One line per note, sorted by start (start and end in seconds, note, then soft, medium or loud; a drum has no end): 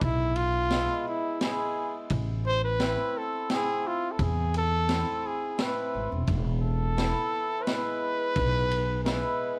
0.00 0.86 B1 loud
0.00 0.71 G#3 medium
0.00 0.37 E4 loud
0.00 kick medium
0.00 ride medium
0.36 1.06 F4 loud
0.36 ride soft
0.70 1.41 G#3 medium
0.70 1.07 B3 medium
0.70 1.08 E5 medium
0.70 snare medium
0.70 ride soft
1.08 1.44 E4 medium
1.41 2.16 G#3 medium
1.41 1.77 B3 medium
1.41 1.78 E4 medium
1.41 1.94 G#4 medium
1.41 snare medium
1.41 ride medium
2.10 2.95 A1 loud
2.10 kick medium
2.10 ride soft
2.47 2.63 C5 loud
2.65 3.19 B4 loud
2.80 3.16 A3 medium
2.80 3.16 C4 medium
2.80 3.17 E4 medium
2.80 snare medium
2.80 ride medium
3.18 3.52 A4 loud
3.50 3.85 A3 medium
3.50 3.86 C4 medium
3.50 3.86 E4 medium
3.50 3.89 G#4 loud
3.50 snare medium
3.50 ride medium
3.87 4.13 F4 loud
4.12 4.24 A4 medium
4.19 5.03 E2 loud
4.19 4.56 G#4 medium
4.19 kick medium
4.19 ride medium
4.54 5.28 A4 loud
4.54 ride medium
4.89 5.24 A3 medium
4.89 5.25 C4 medium
4.89 5.25 E4 medium
4.89 snare medium
4.89 ride medium
5.27 5.63 G#4 medium
5.58 5.93 A3 medium
5.58 5.93 C4 medium
5.58 5.94 E4 medium
5.58 6.13 B4 medium
5.58 snare medium
5.58 ride soft
5.94 6.10 G#1 medium
6.12 6.27 E1 medium
6.27 7.11 E1 loud
6.27 kick medium
6.27 ride soft
6.62 7.61 A4 loud
6.97 9.59 E3 medium
6.97 7.33 B3 medium
6.97 7.33 E4 medium
6.97 snare medium
6.97 ride medium
7.59 9.03 B4 loud
7.59 7.64 C5 medium
7.66 9.04 G#3 medium
7.66 8.02 B3 medium
7.66 8.03 E4 medium
7.66 snare medium
7.66 ride medium
8.36 9.20 B1 loud
8.36 kick medium
8.36 ride soft
8.71 ride medium
9.04 9.59 G#3 medium
9.04 9.41 B3 medium
9.04 9.41 E4 medium
9.04 9.59 B4 medium
9.04 snare medium
9.04 ride soft